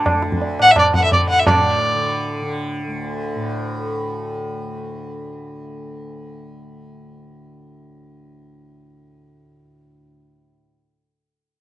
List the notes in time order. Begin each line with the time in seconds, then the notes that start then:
Already playing: D2 A2 D3
0.06 tabla na, tabla ge
0.12 D2
0.22 tabla te
0.32 tabla ge
0.42 tabla tin
0.59 A2 F#5, tabla na
0.71 E5
0.76 D5, tabla na, tabla ge
0.94 F#5, tabla ge
1.04 D3 E5
1.12 D5, tabla tin, tabla ge
1.29 F#5
1.39 E5
1.47 A2 D5, tabla na, tabla ge
1.94 D3
2.42 D3
2.87 D2
3.35 A2